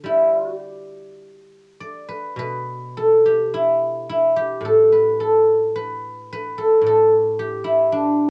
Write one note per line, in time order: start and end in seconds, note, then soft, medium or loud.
0.00 1.19 D3 soft
0.00 3.51 G3 soft
0.00 1.15 A4 medium
0.00 0.46 B4 medium
0.05 0.32 E4 medium
0.32 0.45 F4 medium
0.45 0.58 F#4 medium
0.58 2.41 G4 medium
1.80 3.65 D5 medium
2.09 2.38 B4 medium
2.36 4.62 B2 soft
2.36 4.43 B4 medium
2.97 4.65 A4 medium
3.26 4.36 G4 medium
3.54 4.09 E4 medium
4.10 6.71 E4 medium
4.37 6.72 G4 medium
4.61 6.81 A2 soft
4.65 5.20 A4 medium
4.92 5.75 B4 medium
5.20 6.58 A4 medium
5.75 6.32 B4 medium
6.33 8.30 B4 medium
6.58 6.86 A4 medium
6.82 8.30 A2 soft
6.87 7.18 A4 medium
7.18 7.39 G4 medium
7.39 8.30 G4 medium
7.64 8.30 E4 medium
7.92 8.30 D4 medium